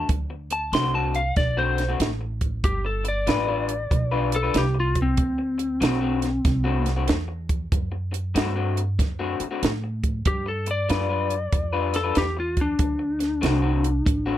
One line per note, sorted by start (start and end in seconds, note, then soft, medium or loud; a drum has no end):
0.09 0.71 D2 medium
0.09 kick loud
0.09 closed hi-hat medium
0.30 muted clean electric guitar stroke soft
0.50 0.73 A5 medium
0.50 muted clean electric guitar stroke soft
0.50 closed hi-hat medium
0.73 1.34 C2 medium
0.73 0.94 D3 medium
0.73 0.93 A3 medium
0.73 0.93 C4 medium
0.73 0.93 F#4 medium
0.73 0.94 C6 medium
0.73 snare loud
0.73 closed hi-hat medium
0.94 1.18 D3 medium
0.94 1.18 A3 medium
0.94 1.18 C4 medium
0.94 1.18 F#4 medium
0.94 1.15 A5 medium
1.15 1.36 F5 medium
1.15 closed hi-hat soft
1.36 1.98 B1 medium
1.36 1.57 D5 medium
1.36 muted clean electric guitar stroke soft
1.36 kick loud
1.36 snare soft
1.36 closed hi-hat medium
1.57 1.82 D3 medium
1.57 1.82 A3 medium
1.57 1.81 C4 medium
1.57 1.81 F#4 medium
1.57 1.92 C5 medium
1.78 snare soft
1.78 closed hi-hat medium
1.89 2.07 D3 medium
1.89 2.07 A3 medium
1.89 2.06 C4 medium
1.89 2.06 F#4 medium
2.00 2.62 A1 medium
2.00 snare loud
2.00 closed hi-hat medium
2.21 muted clean electric guitar stroke soft
2.41 kick medium
2.41 closed hi-hat medium
2.64 3.25 G1 medium
2.64 2.85 G4 medium
2.64 kick loud
2.64 closed hi-hat medium
2.85 3.06 A4 medium
2.85 muted clean electric guitar stroke soft
3.04 muted clean electric guitar stroke soft
3.04 closed hi-hat medium
3.08 4.31 D5 medium
3.27 3.89 A1 medium
3.27 3.48 G3 medium
3.27 3.47 D4 medium
3.27 3.47 F4 medium
3.27 3.46 B4 medium
3.27 snare loud
3.27 closed hi-hat medium
3.47 3.72 G3 medium
3.47 3.72 D4 medium
3.47 3.72 F4 medium
3.47 3.72 B4 medium
3.69 closed hi-hat medium
3.91 4.53 B1 medium
3.91 muted clean electric guitar stroke soft
3.91 kick loud
3.91 closed hi-hat medium
4.12 4.36 G3 medium
4.12 4.36 D4 medium
4.12 4.36 F4 medium
4.12 4.35 B4 medium
4.32 4.55 A4 medium
4.32 closed hi-hat medium
4.43 4.61 G3 medium
4.43 4.61 D4 medium
4.43 4.61 F4 medium
4.43 4.60 B4 medium
4.54 5.16 C2 medium
4.54 4.77 G4 medium
4.54 snare loud
4.54 closed hi-hat medium
4.75 muted clean electric guitar stroke soft
4.80 4.98 F4 medium
4.95 kick medium
4.95 closed hi-hat medium
5.02 6.86 C4 medium
5.17 5.80 D2 medium
5.17 kick loud
5.17 closed hi-hat medium
5.38 muted clean electric guitar stroke soft
5.58 muted clean electric guitar stroke soft
5.58 closed hi-hat medium
5.81 6.43 B1 medium
5.81 6.01 D3 medium
5.81 6.00 A3 medium
5.81 6.00 C4 medium
5.81 6.00 F#4 medium
5.81 snare loud
5.81 closed hi-hat medium
6.01 6.26 D3 medium
6.01 6.26 A3 medium
6.01 6.26 C4 medium
6.01 6.25 F#4 medium
6.22 snare soft
6.22 closed hi-hat soft
6.45 7.06 C2 medium
6.45 muted clean electric guitar stroke soft
6.45 kick loud
6.45 snare soft
6.45 closed hi-hat medium
6.64 6.89 D3 medium
6.64 6.89 A3 medium
6.64 6.89 C4 medium
6.64 6.89 F#4 medium
6.86 snare soft
6.86 closed hi-hat medium
6.96 7.15 D3 medium
6.96 7.15 A3 medium
6.96 7.14 C4 medium
6.96 7.14 F#4 medium
7.08 7.70 E2 medium
7.08 snare loud
7.08 closed hi-hat medium
7.28 muted clean electric guitar stroke soft
7.49 kick medium
7.49 closed hi-hat medium
7.72 8.34 F#2 medium
7.72 kick loud
7.72 closed hi-hat medium
7.92 muted clean electric guitar stroke soft
8.12 muted clean electric guitar stroke soft
8.12 closed hi-hat medium
8.35 8.97 G2 medium
8.35 8.55 D3 medium
8.35 8.55 A3 medium
8.35 8.55 C4 medium
8.35 8.54 F#4 medium
8.35 snare loud
8.35 closed hi-hat medium
8.56 8.80 D3 medium
8.56 8.80 A3 medium
8.56 8.80 C4 medium
8.56 8.80 F#4 medium
8.77 closed hi-hat medium
8.99 9.37 F#2 medium
8.99 muted clean electric guitar stroke soft
8.99 kick medium
8.99 snare soft
8.99 closed hi-hat medium
9.19 9.44 D3 medium
9.19 9.44 A3 medium
9.19 9.44 C4 medium
9.19 9.43 F#4 medium
9.40 muted upright bass stroke soft
9.40 closed hi-hat medium
9.51 9.69 D3 medium
9.51 9.69 A3 medium
9.51 9.69 C4 medium
9.51 9.68 F#4 medium
9.63 10.24 A2 medium
9.63 snare loud
9.63 closed hi-hat medium
9.84 muted clean electric guitar stroke soft
10.04 kick medium
10.04 closed hi-hat medium
10.25 10.87 G2 medium
10.25 10.47 G4 medium
10.25 kick loud
10.25 closed hi-hat medium
10.46 10.68 A4 medium
10.46 muted clean electric guitar stroke soft
10.66 muted clean electric guitar stroke soft
10.66 closed hi-hat medium
10.71 11.93 D5 medium
10.89 11.51 F#2 medium
10.89 11.10 G3 medium
10.89 11.09 D4 medium
10.89 11.09 F4 medium
10.89 11.08 B4 medium
10.89 snare loud
10.89 closed hi-hat medium
11.09 11.34 G3 medium
11.09 11.34 D4 medium
11.09 11.34 F4 medium
11.09 11.33 B4 medium
11.30 closed hi-hat medium
11.52 12.14 F2 medium
11.52 muted clean electric guitar stroke soft
11.52 kick loud
11.52 closed hi-hat medium
11.73 11.97 G3 medium
11.73 11.97 D4 medium
11.73 11.97 F4 medium
11.73 11.97 B4 medium
11.94 12.16 A4 medium
11.94 snare soft
11.94 closed hi-hat medium
12.03 12.22 G3 medium
12.03 12.22 D4 medium
12.03 12.22 F4 medium
12.03 12.22 B4 medium
12.15 12.78 E2 medium
12.15 12.38 G4 medium
12.15 snare loud
12.15 closed hi-hat medium
12.37 12.59 F4 medium
12.37 muted clean electric guitar stroke soft
12.57 kick medium
12.57 closed hi-hat medium
12.61 14.38 D4 medium
12.79 13.41 D2 medium
12.79 kick loud
12.79 closed hi-hat medium
12.99 muted clean electric guitar stroke soft
13.19 muted clean electric guitar stroke soft
13.19 snare soft
13.19 closed hi-hat medium
13.41 14.05 C2 medium
13.41 13.62 D3 medium
13.41 13.61 A3 medium
13.41 13.61 C4 medium
13.41 13.61 F#4 medium
13.41 snare medium
13.41 closed hi-hat medium
13.62 13.87 D3 medium
13.62 13.87 A3 medium
13.62 13.87 C4 medium
13.62 13.87 F#4 medium
13.84 closed hi-hat medium
14.06 14.38 A1 medium
14.06 muted clean electric guitar stroke soft
14.06 kick loud
14.06 closed hi-hat medium
14.26 14.38 D3 medium
14.26 14.38 A3 medium
14.26 14.38 C4 medium
14.26 14.38 F#4 medium